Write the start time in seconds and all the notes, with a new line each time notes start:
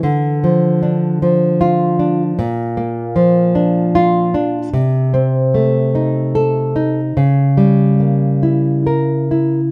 0.03 D3
0.44 F3
0.83 D4
1.22 F3
1.61 F4
1.99 D4
2.39 A#2
2.77 A#3
3.16 F3
3.55 D4
3.95 F4
4.34 D4
4.73 C3
5.14 C4
5.54 A3
5.95 D#4
6.35 A4
6.76 D#4
7.17 C#3
7.57 G3
8.00 A#3
8.43 E4
8.87 A#4
9.31 E4